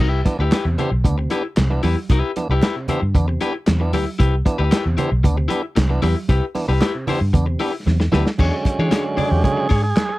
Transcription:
0.00 C2 C3 E4 G4 B4, kick, crash, muted conga
0.25 E3 B3 D4, muted clean electric guitar stroke, kick, closed hi-hat, muted conga
0.39 D2 B3 D4 E4 G4 B4
0.52 B3 D4 E4 G4 B4, snare, clap, closed hi-hat, high conga
0.65 E2 C3, muted clean electric guitar stroke
0.78 E3 B3 D4 E4 G4 C5, closed hi-hat, low conga
0.91 B1, muted clean electric guitar stroke
1.04 D2 B3 D4, muted clean electric guitar stroke, kick, closed hi-hat, muted conga, low conga
1.18 C3, muted clean electric guitar stroke
1.30 B3 D4 E4 G4 B4, closed hi-hat, muted conga
1.44 muted clean electric guitar stroke
1.56 C2 C3, muted clean electric guitar stroke, snare, clap, closed hi-hat, high conga
1.70 E3 B3 D4, muted clean electric guitar stroke
1.83 E2 B3 D4 E4 G4 B4, open hi-hat, high conga
1.97 muted clean electric guitar stroke
2.09 C2 C3 E4 G4 B4, kick, closed hi-hat, muted conga
2.36 E3 B3 D4, muted clean electric guitar stroke, closed hi-hat, muted conga
2.49 C2 B3 D4 E4 G4 B4
2.62 B3 D4 E4 G4 B4, snare, clap, closed hi-hat, high conga
2.75 C3, muted clean electric guitar stroke
2.88 E3 B3 D4 E4 G4 C5, muted fingered electric bass stroke, closed hi-hat, low conga
3.02 G2, muted clean electric guitar stroke
3.14 E2 B3 D4, muted clean electric guitar stroke, kick, closed hi-hat, low conga
3.28 C3, muted clean electric guitar stroke
3.41 B3 D4 E4 G4 B4, closed hi-hat, muted conga
3.55 muted clean electric guitar stroke
3.66 E2 C3, muted clean electric guitar stroke, snare, clap, closed hi-hat, high conga
3.80 E3 B3 D4, muted clean electric guitar stroke
3.93 D2 B3 D4 E4 G4 B4, open hi-hat, high conga
4.06 muted clean electric guitar stroke
4.19 C2 C3 E4 G4 B4, kick, closed hi-hat, muted conga
4.45 E3 B3 D4, muted clean electric guitar stroke, kick, closed hi-hat, muted conga
4.58 D2 B3 D4 E4 G4 B4
4.71 B3 D4 E4 G4 B4, snare, clap, closed hi-hat, high conga
4.85 E2 C3, muted clean electric guitar stroke
4.97 E3 B3 D4 E4 G4 C5, closed hi-hat, low conga
5.11 B1, muted clean electric guitar stroke
5.24 D2 B3 D4, muted clean electric guitar stroke, kick, closed hi-hat, low conga
5.37 C3, muted clean electric guitar stroke
5.48 B3 D4 E4 G4 B4, closed hi-hat, muted conga
5.62 muted clean electric guitar stroke
5.76 C2 C3, muted clean electric guitar stroke, snare, clap, closed hi-hat, high conga
5.89 E3 B3 D4, muted clean electric guitar stroke
6.02 E2 B3 D4 E4 G4 B4, open hi-hat, high conga
6.16 muted clean electric guitar stroke
6.28 C2 C3 E4 G4 B4, kick, closed hi-hat, muted conga
6.55 E3 B3 D4, muted clean electric guitar stroke, open hi-hat, muted conga
6.68 C2 B3 D4 E4 G4 B4
6.81 B3 D4 E4 G4 B4, snare, clap, closed hi-hat, high conga
6.94 C3, muted clean electric guitar stroke
7.07 E3 B3 D4 E4 G4 C5, muted fingered electric bass stroke, open hi-hat, low conga
7.21 G2, muted clean electric guitar stroke
7.33 E2 B3 D4, muted clean electric guitar stroke, kick, closed hi-hat, muted conga, low conga
7.46 C3, muted clean electric guitar stroke
7.59 B3 D4 E4 G4 B4, open hi-hat, muted conga
7.74 muted clean electric guitar stroke
7.86 E2 C3, muted clean electric guitar stroke, snare, high conga
8.00 muted clean electric guitar stroke, snare
8.12 D2 E3 B3 D4 E4 G4 B4, snare, high conga
8.25 B3 D4, muted clean electric guitar stroke, snare
8.38 E2 D3 F#3 G#3 C#4 D4 G#4 C#5, kick, crash, muted conga
8.65 muted fingered electric bass stroke, muted clean electric guitar stroke, kick, closed hi-hat, muted conga
8.79 E3 D4 G#4 C#5
8.91 D4 G#4 C#5, snare, clap, closed hi-hat, high conga
9.05 muted clean electric guitar stroke
9.17 D4 G#4 D5, muted fingered electric bass stroke, open hi-hat, low conga
9.31 E2 G4, muted clean electric guitar stroke
9.43 D3 F#3 G#3 C#4 G#4, muted clean electric guitar stroke, kick, closed hi-hat, low conga
9.57 muted clean electric guitar stroke
9.69 G#2 D4 G#4 C#5, kick, open hi-hat, muted conga
9.82 G#4, muted clean electric guitar stroke
9.96 muted clean electric guitar stroke, snare, clap, closed hi-hat, high conga
10.09 muted clean electric guitar stroke

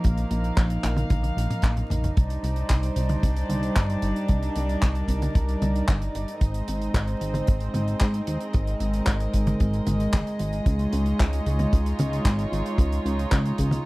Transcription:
Already playing: F3 A#3 D#4 A#4
0.04 A#1 F5, kick, closed hi-hat
0.18 closed hi-hat
0.31 A#1, closed hi-hat
0.44 closed hi-hat
0.57 A#1, kick, clap, closed hi-hat
0.70 closed hi-hat
0.83 A#1, kick, clap, closed hi-hat
0.97 closed hi-hat, high tom
1.10 A#1, kick, closed hi-hat, high tom
1.23 closed hi-hat, high tom
1.37 A#1, closed hi-hat
1.50 closed hi-hat, mid tom
1.62 A#1, kick, clap, closed hi-hat, mid tom
1.77 closed hi-hat, mid tom
1.90 A#1, closed hi-hat, mid tom
2.04 closed hi-hat, mid tom
2.16 C2 G3 D4 C5 D5, kick, closed hi-hat
2.30 closed hi-hat
2.43 C2, closed hi-hat
2.56 closed hi-hat
2.70 C2, kick, clap, closed hi-hat
2.83 closed hi-hat
2.96 C2, closed hi-hat
3.09 closed hi-hat, high tom
3.23 C2, kick, closed hi-hat
3.37 closed hi-hat
3.49 C2, closed hi-hat, high tom
3.63 closed hi-hat
3.76 G1, kick, clap, closed hi-hat
3.90 closed hi-hat
4.02 G1, closed hi-hat
4.16 closed hi-hat
4.28 C2 A#4, kick, closed hi-hat
4.43 closed hi-hat
4.56 C2, closed hi-hat
4.69 closed hi-hat
4.82 C2, kick, clap, closed hi-hat
4.95 closed hi-hat
5.08 C2, kick, closed hi-hat
5.22 closed hi-hat, high tom
5.35 C2, kick, closed hi-hat
5.49 closed hi-hat
5.62 C2, closed hi-hat, high tom
5.76 closed hi-hat
5.88 G1, kick, clap, closed hi-hat, high tom
6.02 closed hi-hat
6.15 G1, closed hi-hat
6.28 closed hi-hat
6.41 G#1 G#3 C4 C5 D#5, kick, closed hi-hat
6.54 closed hi-hat
6.68 G#1, closed hi-hat
6.82 closed hi-hat
6.94 G#1, kick, clap, closed hi-hat
7.08 closed hi-hat
7.21 G#1, closed hi-hat
7.34 closed hi-hat, high tom
7.47 G#1, kick, closed hi-hat
7.60 closed hi-hat
7.74 G#1, closed hi-hat, high tom
7.88 closed hi-hat
8.00 G#2, kick, clap, closed hi-hat
8.14 closed hi-hat
8.27 D#2, closed hi-hat
8.41 closed hi-hat
8.53 G#1 A#4, kick, closed hi-hat
8.67 closed hi-hat
8.80 G#1, closed hi-hat
8.94 closed hi-hat
9.06 G#1, kick, clap, closed hi-hat
9.20 closed hi-hat
9.34 G#1, kick, closed hi-hat
9.47 closed hi-hat, high tom
9.60 G#1, kick, closed hi-hat
9.73 closed hi-hat
9.87 G#1, closed hi-hat, high tom
10.00 closed hi-hat
10.13 G#1, kick, clap, closed hi-hat, high tom
10.27 closed hi-hat
10.39 G#1, closed hi-hat
10.53 closed hi-hat
10.66 C#2 D#4 F4 C#5, kick, closed hi-hat
10.79 closed hi-hat
10.93 C#2, closed hi-hat
11.06 closed hi-hat
11.20 C#2, kick, clap, closed hi-hat
11.33 closed hi-hat
11.46 C#2, closed hi-hat
11.59 closed hi-hat, high tom
11.73 C#2, kick, closed hi-hat
11.86 closed hi-hat
11.99 C#2, closed hi-hat, high tom
12.13 closed hi-hat
12.25 G#1, kick, clap, closed hi-hat
12.39 closed hi-hat
12.52 G#1, closed hi-hat
12.66 closed hi-hat
12.78 C#2, kick, closed hi-hat
12.92 closed hi-hat
13.05 C#2, closed hi-hat
13.19 closed hi-hat
13.32 C#2, kick, clap, closed hi-hat
13.46 closed hi-hat
13.58 C#2, kick, closed hi-hat
13.71 closed hi-hat, high tom

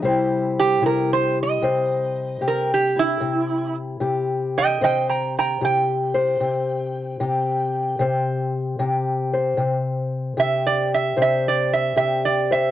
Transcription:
0.02 C3 G3 E4 G4 C5
0.60 G4
0.81 C3 E4
0.86 A#4
1.13 C5
1.43 D#5
1.62 C3 C5
2.41 C3 G4
2.48 A#4
2.74 G4
2.96 E4
3.21 C3
4.00 C3 G4
4.58 D#5 G5
4.81 C3 C5 D#5 G5
5.09 G5 A#5
5.39 G5 A#5
5.61 C3 G4 G5
6.14 C5
6.40 C3
7.20 C3 G4
7.99 C3 C5
8.79 C3 G4
9.33 C5
9.57 C3
10.37 C3 G4 E5
10.67 D5
10.94 E5
11.17 C3 C5
11.22 E5
11.48 D5
11.73 E5
11.96 C3 G4 E5
12.25 D5
12.51 C5 E5

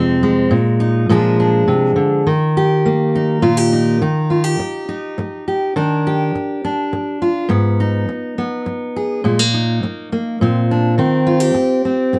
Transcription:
Already playing: F2 C3 F3 G#3 C4
0.23 G#3
0.51 A#2
0.80 D#4
1.09 A#2 F3 G#3 D4 G#4
1.40 D4
1.68 C3
1.96 D3
2.27 D#3
2.57 G4
2.86 A#3
3.15 D#4
3.42 A#2 F4
3.57 G4
3.73 D#4
4.01 D#3 D#4
4.30 F4
4.44 G4
4.59 muted steel-string acoustic guitar stroke
4.89 D#4
5.18 muted steel-string acoustic guitar stroke
5.48 G4
5.76 D#3 D4
6.07 G4
6.35 muted steel-string acoustic guitar stroke
6.65 D4
6.93 muted steel-string acoustic guitar stroke
7.22 F4
7.49 G#2 B3
7.80 D#4
8.09 muted steel-string acoustic guitar stroke
8.38 B3
8.66 muted steel-string acoustic guitar stroke
8.96 G#4
9.24 A#2 G#3
9.39 A#3
9.54 D#4
9.83 muted steel-string acoustic guitar stroke
10.12 A#3
10.41 A#2 C4
10.71 D4
10.98 D#3 C4
11.27 F4
11.40 G4
11.54 muted steel-string acoustic guitar stroke
11.85 C4
12.13 muted steel-string acoustic guitar stroke

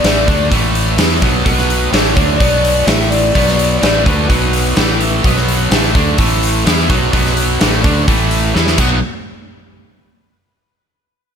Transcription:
Already playing: D5
0.04 A1 A2 E3 A3, snare, open hi-hat
0.28 D2 D3 A3 D4, kick, open hi-hat
0.51 A1 A2 E3 A3, kick, open hi-hat
0.75 open hi-hat
0.97 E2 E3 B3 E4, snare, open hi-hat
1.22 B1 B2 F#3 B3, kick, open hi-hat
1.45 B1 B2 F#3 B3 B4, kick, open hi-hat
1.58 snare
1.70 open hi-hat
1.92 A1 A2 E3 A3 C#5, snare, open hi-hat
2.15 D2 D3 A3 D4 C#5, kick, open hi-hat
2.39 B1 B2 F#3 B3 D5, kick, open hi-hat
2.65 open hi-hat
2.86 A1 A2 E3 A3 E5, snare, open hi-hat
3.10 D5, open hi-hat
3.34 B1 B2 F#3 B3, kick, open hi-hat
3.48 snare
3.59 open hi-hat
3.78 A1 A2 E3 D5
3.83 A3, snare, open hi-hat
4.04 D2 D3 A3 D4 B4, kick, open hi-hat
4.29 B1 B2 F#3 B3, kick, open hi-hat
4.53 open hi-hat
4.76 A1 A2 E3 A3, snare, open hi-hat
5.01 open hi-hat
5.24 B1 B2 F#3 B3, kick, open hi-hat
5.37 snare
5.48 open hi-hat
5.71 A1 A2 E3 A3, snare, open hi-hat
5.95 D2 D3 A3 D4, kick, open hi-hat
6.18 A1 A2 E3 A3, kick, open hi-hat
6.43 open hi-hat
6.65 E2 E3 B3 E4, snare, open hi-hat
6.89 B1 B2 F#3 B3, kick, open hi-hat
7.12 B1 B2 F#3 B3, kick, open hi-hat
7.25 snare
7.37 open hi-hat
7.61 A1 A2 E3 A3, snare, open hi-hat
7.84 D2 D3 A3 D4, kick, open hi-hat
8.07 A1 A2 E3 A3, kick, open hi-hat
8.31 open hi-hat
8.55 E2 E3 B3 E4, snare
8.67 snare
8.78 B1 B2 F#3 B3, kick, crash

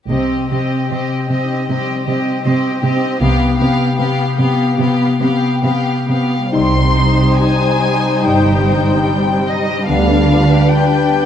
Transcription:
0.08 C2 C3 C4 G4 D#5
0.37 C4
0.49 C3 C4 G4 D#5
0.65 G4
0.88 C3 C4 G4 C5 D#5
1.18 G4
1.28 C3 C4 G4 D#5
1.44 D#4
1.68 C3 G3 C4 G4 D#5
1.94 C4
2.04 C3 C4 G4 D#5
2.19 G4
2.43 C3 C4 G4 C5 D#5
2.71 G4
2.81 C3 C4 G4 D#5
2.96 D#4
3.19 C2 C3 B3 G4 F5
3.47 B3
3.57 C3 B3 G4 F5
3.73 G4
3.95 C3 B3 G4 B4 F5
4.25 G4
4.36 C3 B3 G4 F5
4.53 F4
4.77 C3 B3 G4 F5
5.07 B3
5.19 C3 B3 G4 F5
5.36 G4
5.62 C3 B3 G4 B4 F5
5.93 G4
6.08 C3 B3 G4 F5
6.24 F4
6.52 C2 C3 G3 D#4 C6
6.56 G3 C5
6.76 C4
6.97 C4 D#4
7.18 G4
7.38 D#4 G4 G#5
7.59 C4
7.81 G3 D#4
8.01 C4
8.20 G1 G2 G3 D#4 G5
8.42 G4
8.62 C4 D#4
8.83 C4
9.02 G3 G4
9.25 C4
9.45 D#4 D#5
9.67 G4
9.86 D2 D3 G3 B3 D4 B4 F5
10.08 D4
10.29 D4 F4
10.50 G4
10.68 F4 B4 G5
10.87 D4
11.08 B3 G4

